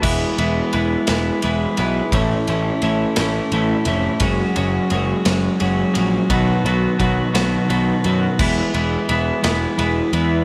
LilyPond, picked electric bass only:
\new Staff \with { instrumentName = "Picked electric bass" } { \clef bass \time 6/8 \key e \major \tempo 4. = 57 e,,8 e,,8 e,,8 e,,8 e,,8 b,,8 | a,,8 a,,8 a,,8 a,,8 a,,8 f,,8 | fis,,8 fis,,8 fis,,8 fis,,8 fis,,8 ais,,8 | b,,8 b,,8 b,,8 b,,8 b,,8 fis,8 |
e,,8 e,,8 e,,8 e,,8 e,,8 e,8 | }